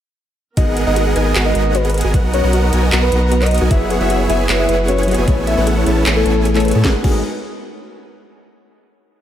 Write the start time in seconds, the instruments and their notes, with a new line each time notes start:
0.57 sub bass G#1, string section G#3 B3 F#4 A#4, supersaw synth B3 G#4 A#4 D#5 F#5, synth arpeggio sound F#4, soft synth lead D#5, kick, closed hi-hat
0.77 synth arpeggio sound G#4, closed hi-hat
0.87 sub bass G#1, supersaw synth B3 G#4 A#4 D#5 F#5, synth arpeggio sound A#4, soft synth lead D#5
0.96 synth arpeggio sound F#4, closed hi-hat
1.06 synth arpeggio sound G#4
1.16 sub bass G#1, supersaw synth B3 G#4 A#4 D#5 G#5, soft synth lead D#5, closed hi-hat
1.26 synth arpeggio sound A#4
1.35 sub bass G#1, supersaw synth B3 G#4 A#4 D#5 F#5, synth arpeggio sound F#4, clap, closed hi-hat
1.46 synth arpeggio sound G#4, soft synth lead D#5
1.55 sub bass G#1, supersaw synth B3 G#4 A#4 D#5 F#5, synth arpeggio sound A#4, closed hi-hat
1.75 synth arpeggio sound F#4, soft synth lead B4, closed hi-hat
1.85 synth arpeggio sound G#4, closed hi-hat
1.90 closed hi-hat
1.94 synth arpeggio sound A#4, closed hi-hat
1.98 closed hi-hat
2.01 sub bass G#1, supersaw synth B3 G#4 A#4 D#5 G#5, synth arpeggio sound F#4, closed hi-hat
2.14 sub bass B1, string section B3 D#4 A#5, supersaw synth B3 F#4 A#4 F#5, synth arpeggio sound F#4, kick, closed hi-hat
2.33 synth arpeggio sound A#4, soft synth lead C#5, closed hi-hat
2.44 sub bass B1, supersaw synth B3 F#4 A#4 D#5 F#5, synth arpeggio sound B4
2.53 synth arpeggio sound F#4, closed hi-hat
2.63 synth arpeggio sound A#4
2.73 sub bass B1, supersaw synth B3 F#4 A#4 D#5 G#5, closed hi-hat
2.83 synth arpeggio sound B4
2.92 sub bass B1, supersaw synth B3 F#4 A#4 D#5 F#5, synth arpeggio sound F#4, clap, closed hi-hat
3.02 synth arpeggio sound A#4, soft synth lead B4
3.12 sub bass B1, supersaw synth B3 F#4 A#4 D#5 F#5, synth arpeggio sound B4, closed hi-hat
3.32 synth arpeggio sound F#4, closed hi-hat
3.42 synth arpeggio sound A#4, soft synth lead D#5, clap, closed hi-hat
3.46 closed hi-hat
3.51 synth arpeggio sound B4, closed hi-hat
3.55 closed hi-hat
3.58 sub bass B1, supersaw synth B3 F#4 A#4 D#5 G#5, synth arpeggio sound F#4, closed hi-hat
3.69 sub bass F#1, synth keys F#3 F#4 G#4 B4 E5, string section F#3 E4 G#4 B4, synth arpeggio sound F#4, supersaw synth C#5, soft synth lead E5, kick, closed hi-hat
3.90 synth arpeggio sound G#4, closed hi-hat
4.00 sub bass F#1, supersaw synth B3 E4 G#4 C#5 E5, synth arpeggio sound B4, soft synth lead F#5
4.10 synth arpeggio sound F#4, closed hi-hat
4.20 synth arpeggio sound G#4
4.28 sub bass F#1, synth keys F#3 F#4 G#4 B4 E5, supersaw synth B3 E4 G#4 C#5 G#5, soft synth lead E5, closed hi-hat
4.40 synth arpeggio sound B4
4.49 sub bass F#1, supersaw synth B3 E4 G#4 C#5 F#5, synth arpeggio sound F#4, clap, closed hi-hat
4.59 synth arpeggio sound G#4, soft synth lead E5
4.69 sub bass F#1, supersaw synth B3 E4 G#4 C#5 F#5, synth arpeggio sound B4, closed hi-hat
4.88 synth arpeggio sound F#4, soft synth lead C#5, closed hi-hat
4.99 synth arpeggio sound G#4, closed hi-hat
5.03 synth keys F#3, closed hi-hat
5.08 synth keys F#4 G#4 B4 D#5, synth arpeggio sound B4, closed hi-hat
5.11 closed hi-hat
5.15 sub bass F#1, supersaw synth B3 E4 G#4 C#5 G#5, synth arpeggio sound F#4, closed hi-hat
5.26 sub bass A1, synth keys A3 E4 G#4 B4 C#5, string section A3 C#4, synth arpeggio sound G#4, supersaw synth A4 G#5, kick, closed hi-hat
5.47 synth arpeggio sound A4, soft synth lead E5, closed hi-hat
5.57 sub bass A1, supersaw synth B3 E4 A4 C#5 F#5, synth arpeggio sound B4
5.67 synth arpeggio sound G#4, closed hi-hat
5.77 synth arpeggio sound A4
5.85 sub bass A1, synth keys A3 E4 G#4 B4, supersaw synth B3 E4 A4 C#5 A5, closed hi-hat
5.89 synth keys C#5
5.97 synth arpeggio sound B4
6.06 sub bass A1, supersaw synth B3 E4 A4 C#5 G#5, synth arpeggio sound G#4, clap, closed hi-hat
6.16 synth arpeggio sound A4, soft synth lead A4
6.26 sub bass A1, supersaw synth B3 E4 A4 C#5 G#5, synth arpeggio sound B4, closed hi-hat
6.45 synth arpeggio sound G#4, closed hi-hat
6.54 synth keys A3 E4 G#4 B4 C#5, synth arpeggio sound A4, soft synth lead A4, clap, closed hi-hat
6.60 closed hi-hat
6.65 synth arpeggio sound B4, closed hi-hat
6.68 closed hi-hat
6.71 sub bass A2, supersaw synth B3 E4 A4 C#5 A5, synth arpeggio sound G#4, closed hi-hat
6.82 sub bass G#1, synth keys G#3 D#4 F#4, string section G#3 F#4 A#4 B4, supersaw synth B3 A#4 F#5, synth arpeggio sound F#4, soft synth lead G#4, kick, snare
6.86 synth keys A#4 B4
7.01 sub bass G#1, synth keys G#3 D#4 F#4, supersaw synth B3 G#4 A#4 D#5 F#5, synth arpeggio sound F#4, soft synth lead G#4, kick, crash
7.06 synth keys A#4 B4